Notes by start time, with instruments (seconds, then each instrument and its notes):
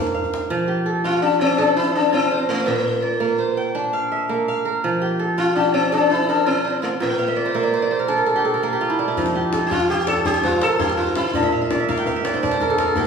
Already playing: kora A#2 A#3 D4 C5 F5
0.07 djembe slap
0.15 kora F5, djembe slap
0.24 djembe tone
0.34 djembe slap
0.50 kora F3
0.68 kora G4
0.86 kora A4
1.04 kora F4, sitar F4
1.22 sitar D4, kora G4
1.41 sitar C4, kora D5
1.58 sitar D4, kora A4
1.77 sitar E4, kora C5
1.95 sitar D4
2.13 sitar C4, kora F4
2.31 kora C5
2.49 sitar A3, kora F4
2.66 kora A#2, sitar A#3
3.02 kora D5
3.20 kora A#3
3.38 kora C5
3.57 kora G5
3.75 kora D4
3.93 kora F5
4.12 kora E5
4.29 kora A#3
4.48 kora F5
4.65 kora A#4
4.84 kora F3
5.02 kora G4
5.19 kora A4
5.38 kora F4, sitar F4
5.56 sitar D4, kora G4
5.74 sitar C4, kora D5
5.92 sitar D4, kora A4
6.10 sitar E4, kora C5
6.29 sitar D4, kora A#4
6.46 sitar C4, kora F4
6.65 kora C5
6.82 sitar A3, kora F4
7.00 kora A#2, sitar A#3
7.09 kora G5
7.19 kora F5
7.28 kora E5
7.36 kora D5
7.46 kora C5
7.54 kora A#3 E5
7.63 kora D5
7.74 kora C5
7.82 kora D5
7.91 kora C5
7.99 kora A#4
8.08 kora D4 A4
8.18 kora A#4
8.26 kora A4
8.36 kora G4
8.45 kora A4
8.54 kora A#4
8.63 kora A#3 A4
8.73 kora G4
8.81 kora F4
8.90 kora E4
8.99 kora D4
9.08 kora E4
9.17 kora F3, djembe bass
9.26 djembe slap, djembe tone
9.35 kora G4
9.53 kora A4, djembe slap, djembe tone
9.67 sitar G4
9.71 kora F4, sitar F4, djembe bass
9.80 djembe slap
9.89 kora G4, sitar G4
10.07 sitar A4, kora D5, djembe slap
10.16 djembe tone
10.25 sitar G4, kora A4, djembe bass
10.34 djembe slap
10.43 sitar F4, kora C5, djembe tone
10.53 djembe slap
10.61 sitar A4, kora A#4, djembe slap
10.80 kora F4, sitar G4, djembe tone, djembe bass
10.89 djembe slap
10.97 sitar F4, kora C5, djembe slap
11.07 djembe tone
11.15 sitar E4, kora F4, djembe slap
11.27 sitar E4
11.34 kora A#2, sitar D4, djembe bass
11.43 kora E5, djembe slap, djembe tone
11.52 kora F5
11.62 kora E5
11.70 kora D5, djembe slap, djembe tone
11.80 kora E5
11.89 kora A#3 F5, djembe bass
11.98 kora G5, djembe slap
12.06 kora F5, djembe tone
12.16 kora E5
12.25 kora D5, djembe slap
12.34 kora C5, djembe tone
12.43 kora D4 D5, djembe bass
12.51 kora C5, djembe slap
12.60 kora A#4, djembe tone
12.70 kora A4
12.78 kora A#4, djembe slap
12.88 kora A4
12.96 kora A#3 G4, djembe tone, djembe bass